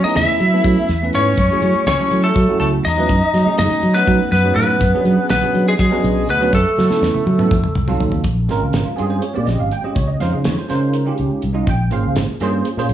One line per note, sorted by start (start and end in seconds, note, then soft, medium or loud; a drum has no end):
0.04 0.37 A3 medium
0.04 0.37 B3 medium
0.04 0.38 C#4 medium
0.04 0.15 D#4 medium
0.04 0.38 E4 medium
0.04 0.38 G#4 medium
0.04 0.16 D#5 medium
0.04 muted fingered electric bass stroke soft
0.15 0.26 E2 medium
0.15 0.97 E4 medium
0.15 1.15 E5 loud
0.15 snare loud
0.15 closed hi-hat medium
0.29 muted fingered electric bass stroke soft
0.39 0.60 F#3 medium
0.39 closed hi-hat medium
0.53 0.86 A3 medium
0.53 0.87 B3 medium
0.53 0.86 C#4 medium
0.53 0.87 E4 medium
0.53 0.87 A4 medium
0.64 0.75 F#3 medium
0.64 kick medium
0.64 closed hi-hat medium
0.89 1.09 E2 medium
0.89 snare soft
0.89 closed hi-hat medium
1.02 1.35 A3 medium
1.02 1.36 B3 medium
1.02 1.36 C#4 medium
1.02 1.36 E4 medium
1.02 1.36 B4 medium
1.13 1.34 G#2 medium
1.13 1.83 C#4 medium
1.13 1.86 C#5 medium
1.13 closed hi-hat medium
1.37 1.48 F#2 medium
1.37 kick loud
1.37 closed hi-hat medium
1.50 1.84 F#3 medium
1.50 1.84 A3 medium
1.50 1.84 C#4 medium
1.50 1.85 E4 medium
1.50 1.85 G#4 medium
1.62 1.72 F#3 medium
1.62 closed hi-hat medium
1.75 muted fingered electric bass stroke soft
1.86 1.97 C#2 medium
1.86 2.21 C#4 medium
1.86 2.21 C#5 medium
1.86 snare loud
1.86 closed hi-hat medium
1.99 2.33 F#3 medium
1.99 2.33 A3 medium
1.99 2.33 C#4 medium
1.99 2.33 E4 medium
1.99 2.33 A4 medium
1.99 muted fingered electric bass stroke soft
2.11 2.31 F#3 medium
2.11 closed hi-hat medium
2.24 2.58 A3 medium
2.24 2.59 A4 medium
2.36 2.46 F#3 medium
2.36 kick medium
2.36 closed hi-hat medium
2.48 2.82 F#3 medium
2.48 2.82 A3 medium
2.48 2.82 C#4 medium
2.48 2.82 E4 medium
2.48 2.83 F#4 medium
2.60 2.80 C#2 medium
2.60 2.71 A3 medium
2.60 2.66 A4 medium
2.60 closed hi-hat medium
2.84 3.06 E2 medium
2.84 3.56 D#4 medium
2.84 3.58 D#5 medium
2.84 closed hi-hat medium
2.97 3.10 F#3 medium
2.97 3.10 A3 medium
2.97 3.10 C#4 medium
2.97 3.10 E4 medium
2.97 3.11 B4 medium
3.09 3.20 F#2 medium
3.09 kick medium
3.09 closed hi-hat medium
3.34 3.44 F#3 medium
3.34 snare soft
3.34 closed hi-hat medium
3.46 3.80 F#3 medium
3.46 3.80 A3 medium
3.46 3.80 C#4 medium
3.46 3.81 D#4 medium
3.46 3.81 G#4 medium
3.46 muted fingered electric bass stroke soft
3.58 3.69 F#2 medium
3.58 3.94 D#4 medium
3.58 3.97 D#5 medium
3.58 snare loud
3.58 closed hi-hat medium
3.71 muted fingered electric bass stroke soft
3.83 4.03 F#3 medium
3.83 closed hi-hat medium
3.94 4.28 F#3 medium
3.94 4.29 A3 medium
3.94 4.30 B3 medium
3.94 4.29 C#4 medium
3.94 4.29 D#4 medium
3.94 4.31 B4 medium
3.94 4.29 B4 medium
4.07 4.18 F#3 medium
4.07 kick loud
4.07 closed hi-hat medium
4.32 4.52 F#2 loud
4.32 4.55 B3 medium
4.32 4.54 B4 medium
4.32 snare soft
4.32 closed hi-hat medium
4.43 4.78 F#3 medium
4.43 4.78 A3 medium
4.43 4.79 C#4 medium
4.43 4.79 D#4 medium
4.43 4.79 G#4 medium
4.56 4.76 A2 medium
4.56 5.27 B3 medium
4.56 5.26 B4 medium
4.56 closed hi-hat medium
4.81 4.91 F#2 medium
4.81 kick loud
4.81 closed hi-hat medium
4.94 5.27 F#3 medium
4.94 5.27 B3 medium
4.94 5.28 C#4 medium
4.94 5.28 D4 medium
4.94 5.28 G#4 medium
5.05 5.15 F#3 medium
5.05 closed hi-hat soft
5.17 muted fingered electric bass stroke soft
5.29 5.40 B1 medium
5.29 5.65 B3 medium
5.29 5.68 B4 medium
5.29 snare loud
5.29 closed hi-hat medium
5.42 5.76 F#3 medium
5.42 5.76 B3 medium
5.42 5.76 C#4 medium
5.42 5.77 D4 medium
5.42 5.77 G#4 medium
5.42 muted fingered electric bass stroke soft
5.54 5.75 F#3 medium
5.54 closed hi-hat medium
5.68 5.74 G#3 medium
5.68 5.73 G#4 medium
5.79 5.89 F#3 medium
5.79 6.27 G#3 medium
5.79 6.30 G#4 medium
5.79 kick loud
5.79 closed hi-hat medium
5.91 6.25 F#3 medium
5.91 6.25 B3 medium
5.91 6.25 C#4 medium
5.91 6.26 D4 medium
5.91 6.26 G#4 medium
6.04 6.24 B1 loud
6.04 closed hi-hat medium
6.29 6.49 D2 medium
6.29 6.52 B3 medium
6.29 6.54 B4 medium
6.29 closed hi-hat medium
6.40 6.53 F#3 medium
6.40 6.53 B3 medium
6.40 6.53 C#4 medium
6.40 6.53 D4 medium
6.40 6.54 B4 medium
6.53 6.63 F#2 medium
6.53 7.96 A3 medium
6.53 7.97 A4 medium
6.53 kick medium
6.53 closed hi-hat medium
6.78 6.88 F#3 medium
6.78 snare medium
6.89 7.23 A3 medium
6.89 7.23 B3 medium
6.89 7.24 C#4 medium
6.89 7.24 E4 medium
6.89 7.24 A4 medium
6.89 muted fingered electric bass stroke soft
6.89 snare medium
7.02 7.12 E2 medium
7.02 snare medium
7.14 muted fingered electric bass stroke soft
7.14 high tom medium
7.26 7.46 F#3 medium
7.26 high tom medium
7.38 7.51 A3 medium
7.38 7.51 B3 medium
7.38 7.51 C#4 medium
7.38 7.51 E4 medium
7.38 7.52 A4 medium
7.38 mid tom medium
7.51 7.61 F2 medium
7.51 kick loud
7.51 mid tom medium
7.64 mid tom medium
7.75 7.95 C2 medium
7.75 mid tom medium
7.87 8.21 F#3 medium
7.87 8.21 C4 medium
7.87 8.22 D#4 medium
7.87 8.22 F4 medium
7.87 8.22 A4 medium
7.87 floor tom medium
8.00 8.20 D#2 medium
8.00 floor tom loud
8.12 floor tom medium
8.24 8.49 A#1 medium
8.24 kick loud
8.24 closed hi-hat medium
8.49 8.59 G#1 medium
8.49 8.83 G#3 medium
8.49 8.83 C4 medium
8.49 8.83 C#4 medium
8.49 8.83 F4 medium
8.49 8.84 A#4 medium
8.49 snare soft
8.49 closed hi-hat soft
8.62 8.72 C#2 medium
8.73 8.83 G#1 medium
8.73 snare loud
8.73 closed hi-hat medium
8.85 8.97 F4 medium
8.85 muted fingered electric bass stroke soft
8.96 9.19 G2 medium
8.96 9.23 G#3 medium
8.96 9.23 C4 medium
8.96 9.23 C#4 medium
8.96 9.24 F4 medium
8.96 8.98 G#4 medium
8.96 9.24 G#4 medium
8.96 closed hi-hat medium
9.10 9.22 C5 medium
9.22 9.34 C#5 medium
9.22 closed hi-hat medium
9.34 9.46 A#2 medium
9.34 9.68 G#3 medium
9.34 9.68 C4 medium
9.34 9.68 C#4 medium
9.34 9.69 F4 medium
9.34 9.69 G4 medium
9.34 9.47 D5 medium
9.45 9.57 A#1 medium
9.45 9.58 D#5 medium
9.45 snare soft
9.45 closed hi-hat soft
9.59 9.70 G#1 medium
9.59 9.71 F5 medium
9.71 9.84 G5 medium
9.71 closed hi-hat medium
9.83 9.96 G#3 medium
9.83 9.96 C4 medium
9.83 9.96 C#4 medium
9.83 9.97 F4 medium
9.83 9.97 G4 medium
9.83 9.96 D#5 medium
9.83 muted fingered electric bass stroke soft
9.95 10.16 C#2 medium
9.95 10.08 C#5 medium
9.95 kick loud
9.95 closed hi-hat medium
10.08 10.20 D#5 medium
10.20 10.31 F2 medium
10.20 10.54 G#3 medium
10.20 10.54 C#4 medium
10.20 10.55 D#4 medium
10.20 10.55 F4 medium
10.20 10.55 C5 medium
10.20 10.32 F5 medium
10.20 snare soft
10.20 closed hi-hat medium
10.33 10.48 C#3 medium
10.33 10.45 D#5 medium
10.44 10.56 F2 medium
10.44 10.57 C#5 medium
10.44 snare loud
10.44 closed hi-hat medium
10.58 10.69 C5 medium
10.68 11.10 C#3 medium
10.68 10.94 G#3 medium
10.68 10.94 C#4 medium
10.68 10.95 D#4 medium
10.68 10.95 F4 medium
10.68 11.16 A#4 medium
10.68 10.95 C5 medium
10.68 snare soft
10.68 closed hi-hat medium
10.93 closed hi-hat medium
11.05 11.40 G#3 medium
11.05 11.40 C#4 medium
11.05 11.40 D#4 medium
11.05 11.40 F4 medium
11.05 11.40 G4 medium
11.18 11.29 C#2 medium
11.18 closed hi-hat medium
11.42 11.63 C2 medium
11.42 closed hi-hat medium
11.53 11.66 G#3 medium
11.53 11.67 C#4 medium
11.53 11.67 D#4 medium
11.53 11.67 F4 medium
11.53 11.67 D#5 medium
11.67 11.92 A#1 medium
11.67 11.92 G5 medium
11.67 kick loud
11.67 closed hi-hat medium
11.90 12.02 G#1 medium
11.90 12.25 A#3 medium
11.90 12.25 C#4 medium
11.90 12.26 F4 medium
11.90 12.26 G#4 medium
11.90 12.26 C5 medium
11.90 12.16 F5 medium
11.90 closed hi-hat medium
12.05 12.15 C#2 medium
12.16 12.26 G#1 loud
12.16 snare loud
12.16 closed hi-hat medium
12.29 muted fingered electric bass stroke soft
12.40 12.61 G2 medium
12.40 12.67 A#3 medium
12.40 12.66 C#4 medium
12.40 12.67 F4 medium
12.40 12.67 G#4 medium
12.40 12.67 C5 loud
12.40 closed hi-hat medium
12.65 closed hi-hat medium
12.77 12.88 A#2 medium
12.77 12.94 A#3 medium
12.77 12.94 C#4 medium
12.77 12.94 F4 medium
12.77 12.94 G#4 medium
12.77 12.94 C5 loud
12.89 12.94 A#1 medium
12.89 closed hi-hat medium